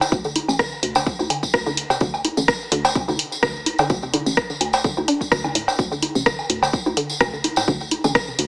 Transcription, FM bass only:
0.12 D2
0.48 A1
0.83 D2
1.19 D2
1.54 D2
2.01 D2
2.37 A1
2.72 D2
3.08 D2
3.43 D2
3.90 D2
4.26 A1
4.61 D2
4.97 D2
5.32 D2
5.79 D2
6.15 A1
6.50 D2
6.86 D2
7.21 D2
7.68 D2
8.04 A1
8.39 D2

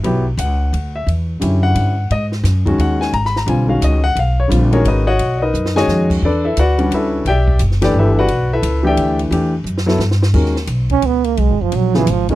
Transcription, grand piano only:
0.03 F#3 B3 E4 G4
0.39 F#5
0.96 E5
1.40 D3 C#4 E4 G4
1.63 F#5
2.12 D#5
2.66 D#3 G#3 C#4 F#4
2.81 F#5
3.01 G#5
3.14 A#5
3.26 B5
3.37 A#5
3.47 D3 G3 C4 F4 G#5
3.67 D#3 G#3 C#4 F#4 F5
3.84 D#5
4.04 F#5
4.19 F5
4.40 C#5
4.48 D3 G3 C4 F4
4.72 D#3 G#3 C#4 F#4 G#4 A#4 C#5
4.88 D#4 A#4 B4 D#5
5.07 F#4 C#5 D#5 F#5
5.37 D5
5.42 D#4 A#4 B4 D#5
5.76 D#3 G#3 C#4 F#4 G#4 C#5 D#5 G#5
6.25 D4 A4 B4 D5
6.45 E4 A4 B4 E5
6.59 F#4 B4 D5 F#5
6.78 G3 C#4 D4 F#4
6.94 E4 A4 B4 E5
7.28 G4 D5 E5 G5
7.82 E3 A3 D4 G4 A4 B4 D5
7.99 E4 A4 B4 E5
8.19 F#4 B4 D5 F#5
8.53 E4 A4 B4 E5
8.83 E3 A3 D4 G4 G5
8.87 G4 D5 E5
9.31 E3 A3 D4 G4
9.86 F#3 B3 E4 A4
10.34 D#3 G#3 C#4 F#4 A#4
11.94 C#3 F#3 B3 F4 G#4
12.29 D#3 G#3 C#4 F#4 A#4

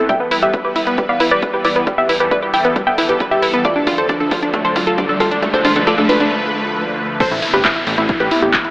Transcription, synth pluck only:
0.09 E5 G5
0.20 B4
0.32 B4
0.43 G4 E5
0.54 B4
0.65 B4
0.87 B4
0.98 B4
1.09 D5 F5
1.20 B4
1.31 B4 D5
1.43 B4
1.54 B4
1.65 B4 D5
1.76 B4
1.87 B4
1.98 G4 E5
2.09 B4
2.20 B4
2.31 B4 D5
2.43 B4
2.54 E5 G5
2.65 B4
2.76 B4
2.87 E5 G5
2.98 B4
3.09 B4
3.20 B4
3.31 G4 E5
3.42 B4
3.54 B4
3.65 F4 D5
3.76 D4
3.87 D4
3.98 A4 C5
4.09 D4
4.20 D4
4.42 D4
4.54 D4
4.65 A4 C5
4.76 D4
4.87 F4 A4
4.98 D4
5.09 D4
5.20 F4 A4
5.31 D4
5.43 D4
5.54 A4 C5
5.65 D4
5.76 D4
5.87 F4 A4
5.98 D4
6.09 D4 B4
6.20 D4
7.20 A4 C5
7.31 E4
7.43 E4
7.54 G4 B4
7.65 E4
7.76 E4
7.98 E4
8.09 E4
8.20 G4 B4
8.31 E4
8.43 E4 G4
8.54 E4
8.65 E4

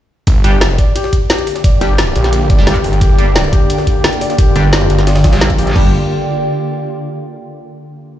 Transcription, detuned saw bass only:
0.27 G1
1.81 G1
2.16 A#1
2.84 G1
3.01 G1
4.56 G1
4.90 G1
5.76 G1

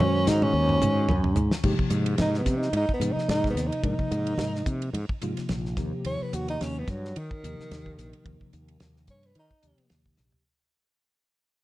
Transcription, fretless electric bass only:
0.00 F#2
0.27 G#2
0.53 D#2
0.81 G#2
1.09 F#2
1.36 G#2
1.52 muted fretless electric bass stroke
1.64 G#2
1.91 G#2
2.19 G#2
2.46 C3
2.73 G#2
3.00 G#2
3.16 muted fretless electric bass stroke
3.29 G#2
3.55 D#2
3.83 G#2
4.11 G#2
4.38 G#2
4.66 C3
4.94 G#2
5.09 muted fretless electric bass stroke
5.23 G#2
5.38 muted fretless electric bass stroke
5.50 A#1
5.77 D#2
6.05 D#2
6.22 muted fretless electric bass stroke
6.33 D#2
6.61 D#2
6.88 G2
7.16 D#3
7.44 D#2
7.71 D#2
7.98 A#1
8.25 D#2
8.41 muted fretless electric bass stroke
8.53 D#2
8.81 D#2
9.08 G2
9.36 D#3
9.63 D#2
9.78 muted fretless electric bass stroke
9.91 D#2
10.19 A#1

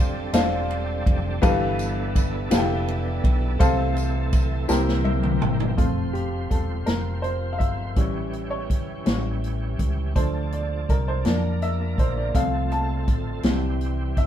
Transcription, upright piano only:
Already playing: D4 F4 A4 C5 F5
0.33 D4 F4 A4 C5 F5
1.42 G2 E3 G4 A4 B4 F5
2.50 E4 G4 A4 B4 F5
2.58 G5
3.59 C3 A4 C5 F5
4.68 C3 E4 G4 A#4 C5 G5
5.04 E5
5.42 G5
5.77 F3 A3 C4 F4
6.13 G4
6.50 A4
6.86 A#4
7.22 C5
7.53 F5
7.58 E5
7.96 E3 G3 C#4
8.50 C#5
9.05 E3 G3 C#4
10.15 F3 A3 D4 C5
10.53 D5
10.90 A#4
11.08 C5
11.25 F3 A#3 D4 D5
11.62 E5
11.99 C5
12.17 D5
12.34 F3 A3 C4 F5
12.72 A5
13.44 E3 G3 C4
14.18 E5

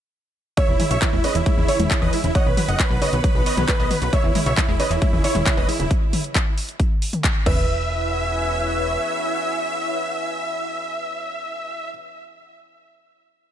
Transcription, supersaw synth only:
0.57 C#5 E5
0.68 E4
0.80 E4
0.91 C#5 E5
1.02 E4
1.13 E4
1.24 B4 D#5
1.35 E4
1.46 E4
1.57 E4
1.68 E4 C#5
1.80 E4
1.91 E4
2.02 B4 D#5
2.13 E4
2.24 E4
2.35 D#5 F#5
2.47 B4
2.57 B4
2.68 D#5 F#5
2.80 B4
2.91 B4
3.02 B4 D#5
3.13 B4
3.24 B4
3.35 B4
3.46 B4 D#5
3.58 B4
3.69 B4
3.80 B4 D#5
3.91 B4
4.02 B4
4.13 C#5 E5
4.24 E4
4.35 E4
4.46 C#5 E5
4.57 E4
4.69 E4
4.80 B4 D#5
4.91 E4
5.02 E4
5.13 E4
5.24 E4 C#5
5.35 E4
5.46 E4
5.57 B4 D#5
5.68 E4
5.80 E4
7.46 E5

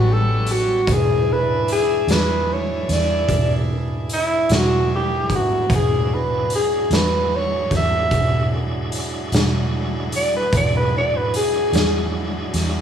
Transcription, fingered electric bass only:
Already playing: A1
0.87 E1
2.07 E2
2.89 E2
3.28 E1
4.50 E1
5.69 E1
6.90 E2
7.71 E2
8.11 E1
9.32 E1
10.53 E1
11.73 E2
12.54 E2

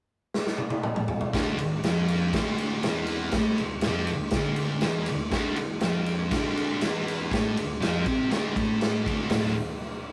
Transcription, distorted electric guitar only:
1.33 D2 D3
1.58 muted distorted electric guitar stroke
1.84 F2 F3
2.35 D2 D3
2.85 E2 E3
3.35 A2 A3
3.61 D2
3.87 F2 F3
4.12 D2
4.35 D2 D3
4.83 E2 E3
5.09 D2
5.32 D2 D3
5.58 muted distorted electric guitar stroke
5.82 F2 F3
6.31 D2 D3
6.82 E2 E3
7.32 A2 A3
7.57 D2
7.80 F2 F3
8.07 C3 C4
8.31 D2 D3
8.56 A2 A3
9.06 D2 D3
9.32 D2 A2 D3

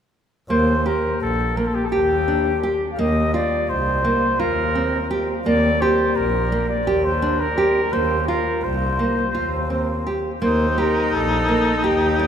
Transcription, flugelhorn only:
0.50 C5
0.86 A#4
1.22 A4
1.57 A#4
1.67 A4
1.75 G4
1.84 A4
1.92 G4
2.92 F5
2.99 D#5
3.34 D5
3.69 C5
4.40 A#4
5.46 D5
5.81 C5
6.16 A#4
6.69 D5
7.04 C5
7.40 A#4
7.93 C5
8.28 A#4
8.64 C5
10.43 C5
10.79 A#4
11.14 A4
11.85 G4

